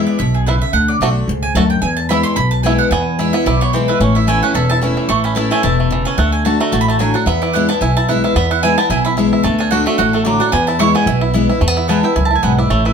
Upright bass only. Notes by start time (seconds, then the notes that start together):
0.20 B1
0.73 D2
1.00 B1
1.28 C#2
1.55 D2
1.82 E2
2.37 B1
2.91 E2
3.46 B1
4.00 A1
4.54 E1
5.09 A1
5.64 E1
6.18 D2
6.72 A1
7.26 E2
7.81 B1
8.36 E2
8.90 B1
9.44 D2
9.99 A1
10.53 E2
11.06 B1
11.61 E2
12.16 C#2
12.43 B1
12.70 A1